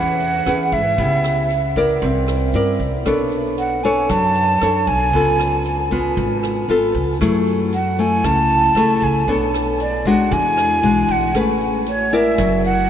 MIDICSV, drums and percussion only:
0, 0, Header, 1, 2, 480
1, 0, Start_track
1, 0, Key_signature, 3, "major"
1, 0, Tempo, 518135
1, 913, Time_signature, 4, 2, 24, 8
1, 11949, End_track
2, 0, Start_track
2, 0, Title_t, "Drums"
2, 190, Note_on_c, 9, 42, 24
2, 195, Note_on_c, 9, 82, 25
2, 282, Note_off_c, 9, 42, 0
2, 288, Note_off_c, 9, 82, 0
2, 429, Note_on_c, 9, 37, 53
2, 429, Note_on_c, 9, 42, 38
2, 435, Note_on_c, 9, 82, 53
2, 522, Note_off_c, 9, 37, 0
2, 522, Note_off_c, 9, 42, 0
2, 527, Note_off_c, 9, 82, 0
2, 666, Note_on_c, 9, 42, 23
2, 670, Note_on_c, 9, 36, 47
2, 673, Note_on_c, 9, 82, 23
2, 759, Note_off_c, 9, 42, 0
2, 763, Note_off_c, 9, 36, 0
2, 766, Note_off_c, 9, 82, 0
2, 909, Note_on_c, 9, 42, 36
2, 911, Note_on_c, 9, 36, 50
2, 911, Note_on_c, 9, 82, 57
2, 1002, Note_off_c, 9, 42, 0
2, 1004, Note_off_c, 9, 36, 0
2, 1004, Note_off_c, 9, 82, 0
2, 1150, Note_on_c, 9, 37, 50
2, 1150, Note_on_c, 9, 42, 23
2, 1154, Note_on_c, 9, 82, 23
2, 1243, Note_off_c, 9, 37, 0
2, 1243, Note_off_c, 9, 42, 0
2, 1247, Note_off_c, 9, 82, 0
2, 1393, Note_on_c, 9, 42, 37
2, 1393, Note_on_c, 9, 82, 56
2, 1486, Note_off_c, 9, 42, 0
2, 1486, Note_off_c, 9, 82, 0
2, 1632, Note_on_c, 9, 36, 47
2, 1633, Note_on_c, 9, 42, 21
2, 1635, Note_on_c, 9, 82, 22
2, 1725, Note_off_c, 9, 36, 0
2, 1725, Note_off_c, 9, 42, 0
2, 1728, Note_off_c, 9, 82, 0
2, 1870, Note_on_c, 9, 42, 38
2, 1872, Note_on_c, 9, 36, 53
2, 1872, Note_on_c, 9, 82, 54
2, 1963, Note_off_c, 9, 42, 0
2, 1964, Note_off_c, 9, 82, 0
2, 1965, Note_off_c, 9, 36, 0
2, 2110, Note_on_c, 9, 37, 54
2, 2110, Note_on_c, 9, 42, 23
2, 2115, Note_on_c, 9, 82, 23
2, 2203, Note_off_c, 9, 37, 0
2, 2203, Note_off_c, 9, 42, 0
2, 2207, Note_off_c, 9, 82, 0
2, 2349, Note_on_c, 9, 42, 37
2, 2350, Note_on_c, 9, 82, 53
2, 2442, Note_off_c, 9, 42, 0
2, 2443, Note_off_c, 9, 82, 0
2, 2592, Note_on_c, 9, 36, 48
2, 2592, Note_on_c, 9, 42, 22
2, 2593, Note_on_c, 9, 82, 23
2, 2685, Note_off_c, 9, 36, 0
2, 2685, Note_off_c, 9, 42, 0
2, 2685, Note_off_c, 9, 82, 0
2, 2831, Note_on_c, 9, 82, 57
2, 2832, Note_on_c, 9, 37, 51
2, 2832, Note_on_c, 9, 42, 37
2, 2833, Note_on_c, 9, 36, 50
2, 2924, Note_off_c, 9, 82, 0
2, 2925, Note_off_c, 9, 36, 0
2, 2925, Note_off_c, 9, 37, 0
2, 2925, Note_off_c, 9, 42, 0
2, 3070, Note_on_c, 9, 82, 22
2, 3074, Note_on_c, 9, 42, 22
2, 3162, Note_off_c, 9, 82, 0
2, 3167, Note_off_c, 9, 42, 0
2, 3311, Note_on_c, 9, 82, 60
2, 3314, Note_on_c, 9, 42, 39
2, 3404, Note_off_c, 9, 82, 0
2, 3407, Note_off_c, 9, 42, 0
2, 3552, Note_on_c, 9, 42, 22
2, 3553, Note_on_c, 9, 82, 24
2, 3645, Note_off_c, 9, 42, 0
2, 3646, Note_off_c, 9, 82, 0
2, 3792, Note_on_c, 9, 37, 49
2, 3792, Note_on_c, 9, 42, 42
2, 3792, Note_on_c, 9, 82, 56
2, 3794, Note_on_c, 9, 36, 49
2, 3885, Note_off_c, 9, 37, 0
2, 3885, Note_off_c, 9, 42, 0
2, 3885, Note_off_c, 9, 82, 0
2, 3886, Note_off_c, 9, 36, 0
2, 4033, Note_on_c, 9, 82, 25
2, 4035, Note_on_c, 9, 42, 26
2, 4125, Note_off_c, 9, 82, 0
2, 4128, Note_off_c, 9, 42, 0
2, 4271, Note_on_c, 9, 82, 51
2, 4273, Note_on_c, 9, 37, 54
2, 4273, Note_on_c, 9, 42, 39
2, 4364, Note_off_c, 9, 82, 0
2, 4366, Note_off_c, 9, 37, 0
2, 4366, Note_off_c, 9, 42, 0
2, 4511, Note_on_c, 9, 82, 23
2, 4516, Note_on_c, 9, 36, 47
2, 4516, Note_on_c, 9, 42, 25
2, 4604, Note_off_c, 9, 82, 0
2, 4608, Note_off_c, 9, 36, 0
2, 4609, Note_off_c, 9, 42, 0
2, 4754, Note_on_c, 9, 82, 57
2, 4756, Note_on_c, 9, 36, 48
2, 4756, Note_on_c, 9, 42, 36
2, 4847, Note_off_c, 9, 82, 0
2, 4848, Note_off_c, 9, 36, 0
2, 4849, Note_off_c, 9, 42, 0
2, 4993, Note_on_c, 9, 82, 24
2, 4997, Note_on_c, 9, 37, 51
2, 4997, Note_on_c, 9, 42, 22
2, 5086, Note_off_c, 9, 82, 0
2, 5089, Note_off_c, 9, 37, 0
2, 5089, Note_off_c, 9, 42, 0
2, 5236, Note_on_c, 9, 82, 58
2, 5240, Note_on_c, 9, 42, 38
2, 5329, Note_off_c, 9, 82, 0
2, 5332, Note_off_c, 9, 42, 0
2, 5474, Note_on_c, 9, 82, 22
2, 5477, Note_on_c, 9, 36, 45
2, 5480, Note_on_c, 9, 42, 23
2, 5567, Note_off_c, 9, 82, 0
2, 5569, Note_off_c, 9, 36, 0
2, 5572, Note_off_c, 9, 42, 0
2, 5716, Note_on_c, 9, 82, 58
2, 5717, Note_on_c, 9, 36, 51
2, 5718, Note_on_c, 9, 42, 38
2, 5808, Note_off_c, 9, 82, 0
2, 5810, Note_off_c, 9, 36, 0
2, 5810, Note_off_c, 9, 42, 0
2, 5957, Note_on_c, 9, 82, 23
2, 5959, Note_on_c, 9, 37, 48
2, 5959, Note_on_c, 9, 42, 23
2, 6049, Note_off_c, 9, 82, 0
2, 6052, Note_off_c, 9, 37, 0
2, 6052, Note_off_c, 9, 42, 0
2, 6197, Note_on_c, 9, 82, 56
2, 6199, Note_on_c, 9, 42, 39
2, 6290, Note_off_c, 9, 82, 0
2, 6292, Note_off_c, 9, 42, 0
2, 6436, Note_on_c, 9, 82, 24
2, 6438, Note_on_c, 9, 36, 45
2, 6440, Note_on_c, 9, 42, 22
2, 6529, Note_off_c, 9, 82, 0
2, 6530, Note_off_c, 9, 36, 0
2, 6532, Note_off_c, 9, 42, 0
2, 6675, Note_on_c, 9, 82, 55
2, 6678, Note_on_c, 9, 36, 49
2, 6680, Note_on_c, 9, 37, 49
2, 6680, Note_on_c, 9, 42, 36
2, 6768, Note_off_c, 9, 82, 0
2, 6771, Note_off_c, 9, 36, 0
2, 6773, Note_off_c, 9, 37, 0
2, 6773, Note_off_c, 9, 42, 0
2, 6914, Note_on_c, 9, 82, 22
2, 6923, Note_on_c, 9, 42, 22
2, 7007, Note_off_c, 9, 82, 0
2, 7016, Note_off_c, 9, 42, 0
2, 7156, Note_on_c, 9, 82, 60
2, 7158, Note_on_c, 9, 42, 38
2, 7249, Note_off_c, 9, 82, 0
2, 7250, Note_off_c, 9, 42, 0
2, 7398, Note_on_c, 9, 42, 23
2, 7401, Note_on_c, 9, 82, 22
2, 7491, Note_off_c, 9, 42, 0
2, 7493, Note_off_c, 9, 82, 0
2, 7635, Note_on_c, 9, 37, 54
2, 7635, Note_on_c, 9, 42, 42
2, 7635, Note_on_c, 9, 82, 55
2, 7636, Note_on_c, 9, 36, 51
2, 7728, Note_off_c, 9, 36, 0
2, 7728, Note_off_c, 9, 37, 0
2, 7728, Note_off_c, 9, 42, 0
2, 7728, Note_off_c, 9, 82, 0
2, 7875, Note_on_c, 9, 42, 23
2, 7878, Note_on_c, 9, 82, 24
2, 7968, Note_off_c, 9, 42, 0
2, 7971, Note_off_c, 9, 82, 0
2, 8116, Note_on_c, 9, 37, 53
2, 8116, Note_on_c, 9, 42, 39
2, 8118, Note_on_c, 9, 82, 53
2, 8208, Note_off_c, 9, 37, 0
2, 8208, Note_off_c, 9, 42, 0
2, 8210, Note_off_c, 9, 82, 0
2, 8356, Note_on_c, 9, 36, 46
2, 8356, Note_on_c, 9, 42, 25
2, 8360, Note_on_c, 9, 82, 25
2, 8449, Note_off_c, 9, 36, 0
2, 8449, Note_off_c, 9, 42, 0
2, 8453, Note_off_c, 9, 82, 0
2, 8595, Note_on_c, 9, 82, 53
2, 8596, Note_on_c, 9, 36, 49
2, 8597, Note_on_c, 9, 42, 37
2, 8687, Note_off_c, 9, 82, 0
2, 8689, Note_off_c, 9, 36, 0
2, 8690, Note_off_c, 9, 42, 0
2, 8837, Note_on_c, 9, 82, 21
2, 8840, Note_on_c, 9, 37, 52
2, 8840, Note_on_c, 9, 42, 25
2, 8930, Note_off_c, 9, 82, 0
2, 8932, Note_off_c, 9, 37, 0
2, 8932, Note_off_c, 9, 42, 0
2, 9073, Note_on_c, 9, 82, 61
2, 9077, Note_on_c, 9, 42, 40
2, 9166, Note_off_c, 9, 82, 0
2, 9170, Note_off_c, 9, 42, 0
2, 9313, Note_on_c, 9, 42, 22
2, 9314, Note_on_c, 9, 82, 24
2, 9315, Note_on_c, 9, 36, 46
2, 9405, Note_off_c, 9, 42, 0
2, 9407, Note_off_c, 9, 82, 0
2, 9408, Note_off_c, 9, 36, 0
2, 9553, Note_on_c, 9, 82, 59
2, 9556, Note_on_c, 9, 36, 52
2, 9559, Note_on_c, 9, 42, 39
2, 9645, Note_off_c, 9, 82, 0
2, 9649, Note_off_c, 9, 36, 0
2, 9652, Note_off_c, 9, 42, 0
2, 9795, Note_on_c, 9, 37, 49
2, 9795, Note_on_c, 9, 42, 23
2, 9797, Note_on_c, 9, 82, 24
2, 9888, Note_off_c, 9, 37, 0
2, 9888, Note_off_c, 9, 42, 0
2, 9890, Note_off_c, 9, 82, 0
2, 10034, Note_on_c, 9, 42, 36
2, 10037, Note_on_c, 9, 82, 57
2, 10126, Note_off_c, 9, 42, 0
2, 10130, Note_off_c, 9, 82, 0
2, 10271, Note_on_c, 9, 42, 22
2, 10273, Note_on_c, 9, 82, 26
2, 10274, Note_on_c, 9, 36, 48
2, 10363, Note_off_c, 9, 42, 0
2, 10366, Note_off_c, 9, 36, 0
2, 10366, Note_off_c, 9, 82, 0
2, 10510, Note_on_c, 9, 37, 52
2, 10510, Note_on_c, 9, 42, 36
2, 10512, Note_on_c, 9, 82, 56
2, 10513, Note_on_c, 9, 36, 51
2, 10603, Note_off_c, 9, 37, 0
2, 10603, Note_off_c, 9, 42, 0
2, 10605, Note_off_c, 9, 82, 0
2, 10606, Note_off_c, 9, 36, 0
2, 10752, Note_on_c, 9, 82, 22
2, 10753, Note_on_c, 9, 42, 22
2, 10845, Note_off_c, 9, 82, 0
2, 10846, Note_off_c, 9, 42, 0
2, 10991, Note_on_c, 9, 42, 40
2, 10991, Note_on_c, 9, 82, 59
2, 11083, Note_off_c, 9, 42, 0
2, 11083, Note_off_c, 9, 82, 0
2, 11231, Note_on_c, 9, 42, 24
2, 11234, Note_on_c, 9, 82, 24
2, 11324, Note_off_c, 9, 42, 0
2, 11327, Note_off_c, 9, 82, 0
2, 11470, Note_on_c, 9, 37, 51
2, 11470, Note_on_c, 9, 42, 36
2, 11473, Note_on_c, 9, 36, 53
2, 11473, Note_on_c, 9, 82, 54
2, 11563, Note_off_c, 9, 37, 0
2, 11563, Note_off_c, 9, 42, 0
2, 11565, Note_off_c, 9, 36, 0
2, 11566, Note_off_c, 9, 82, 0
2, 11714, Note_on_c, 9, 42, 25
2, 11715, Note_on_c, 9, 82, 26
2, 11807, Note_off_c, 9, 42, 0
2, 11807, Note_off_c, 9, 82, 0
2, 11949, End_track
0, 0, End_of_file